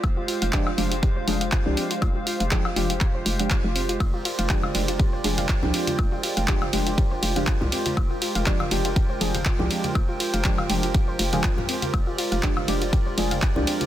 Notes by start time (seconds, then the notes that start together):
Already playing: G#3 F4 G4 C5 G5
0.03 F1 F4 F5, kick, closed hi-hat, high woodblock
0.17 F4
0.28 F4, open hi-hat
0.42 F1 F5, closed hi-hat
0.53 F3 G#3 D4 F4 G4, kick, clap, closed hi-hat
0.67 F5, high woodblock
0.78 F1 F3 G#3 D4 F4 G4, open hi-hat
0.91 F4, closed hi-hat
1.02 G4, kick, closed hi-hat
1.16 C5
1.27 F1 F3 G#3 D4 F4 G#4, open hi-hat
1.41 F5, closed hi-hat
1.52 F4, kick, clap, closed hi-hat
1.65 C2 F3 G#3 D4 F4 G4
1.77 C4, open hi-hat
1.91 F4, closed hi-hat
2.02 F1 F4, kick, closed hi-hat, high woodblock
2.15 F4
2.27 F4, open hi-hat
2.40 F1 F5, closed hi-hat
2.51 F3 G#3 D4 F4 G4, kick, clap, closed hi-hat
2.65 F5, high woodblock
2.76 F1 F3 G#3 D4 F4 G4, open hi-hat
2.90 F4, closed hi-hat
3.01 G4, kick, clap, closed hi-hat
3.15 C5
3.26 F1 F4, open hi-hat
3.39 F3 G#3 D4 G4 F5, closed hi-hat
3.50 F4, kick, clap, closed hi-hat
3.64 F1 F4
3.75 C4, open hi-hat
3.89 F4, closed hi-hat
4.00 F1 F4 A#4 D5, kick, closed hi-hat, ride, high woodblock
4.14 F4
4.25 F4, open hi-hat, ride
4.39 F1 F5 G5, closed hi-hat
4.49 F3 G#3 D4 F4 G4, kick, clap, closed hi-hat, ride
4.62 F5, high conga, high woodblock
4.74 F1 F3 G#3 D4 F4 G4, open hi-hat, ride
4.88 F4, closed hi-hat
4.99 G4, kick, closed hi-hat, ride
5.13 C5
5.24 F1 F3 G#3 D4 F4 G#4, open hi-hat, ride
5.37 F5, closed hi-hat, high conga
5.49 F4, kick, clap, closed hi-hat, ride
5.62 C2 F3 G#3 D4 F4 G4, low conga
5.74 C4, open hi-hat, ride
5.87 F4, closed hi-hat, high conga
5.98 F1 F4, kick, closed hi-hat, ride, high woodblock
6.12 F4
6.23 F4, open hi-hat, ride
6.37 F1 F5, closed hi-hat
6.48 F3 G#3 D4 F4 G4, kick, clap, closed hi-hat, ride
6.62 F5, high conga, high woodblock
6.73 F1 F3 G#3 D4 F4 G4, open hi-hat, ride
6.87 F4, closed hi-hat
6.98 G4, kick, closed hi-hat, ride
7.11 C5
7.23 F1 F4, open hi-hat, ride
7.36 F3 G#3 D4 G4 F5, closed hi-hat, high conga
7.47 F4, kick, clap, closed hi-hat, ride
7.61 C2 F4, low conga
7.72 C4, open hi-hat, ride
7.86 F4, closed hi-hat, high conga
7.97 F1 F4 G5, kick, closed hi-hat, ride, high woodblock
8.11 F4
8.22 F4, open hi-hat, ride
8.35 F1 F5, closed hi-hat
8.46 F3 G#3 D4 F4 G4, kick, clap, closed hi-hat, ride
8.60 F5, high conga, high woodblock
8.71 F1 F3 G#3 D4 F4 G4, open hi-hat, ride
8.85 F4, closed hi-hat
8.96 G4, kick, closed hi-hat, ride
9.10 C5
9.21 F1 F3 G#3 D4 F4 G#4, open hi-hat, ride
9.34 F5, closed hi-hat, high conga
9.45 F4, kick, clap, closed hi-hat, ride
9.59 C2 F3 G#3 D4 F4 G4, low conga
9.70 C4, open hi-hat, ride
9.84 F4, closed hi-hat, high conga
9.95 F1 F4, kick, closed hi-hat, ride, high woodblock
10.09 F4
10.20 F4, open hi-hat, ride
10.34 F1 F5, closed hi-hat
10.44 F3 G#3 D4 F4 G4, kick, clap, closed hi-hat
10.58 F5, high conga, high woodblock
10.69 F1 F3 G#3 D4 F4 G4, open hi-hat, ride
10.83 F4, closed hi-hat
10.94 G4, kick, closed hi-hat, ride
11.08 C5
11.19 F1 F4, open hi-hat, ride
11.33 F3 G#3 D4 G#4 F5, closed hi-hat, high conga
11.43 F4, kick, clap, closed hi-hat, ride
11.57 F2 F4, low conga
11.69 C4, open hi-hat, ride
11.82 F4, closed hi-hat, high conga
11.93 F1 F4 D5, kick, closed hi-hat, ride, high woodblock
12.07 F4
12.18 F4, open hi-hat, ride
12.32 F1 F5 G5, closed hi-hat
12.43 F3 G#3 D4 F4 G4, kick, clap, closed hi-hat, ride
12.57 F5, high conga, high woodblock
12.68 F1 F3 G#3 D4 F4 G4, open hi-hat, ride
12.81 F4, closed hi-hat
12.93 G4, kick, closed hi-hat, ride
13.06 C5
13.17 F1 F3 G#3 D4 F4 G#4, open hi-hat, ride
13.31 F5, closed hi-hat, high conga
13.42 F4, kick, clap, closed hi-hat, ride
13.55 C2 F3 G#3 D4 F4 G4, low conga
13.67 C4, open hi-hat, ride
13.81 F4, closed hi-hat, high conga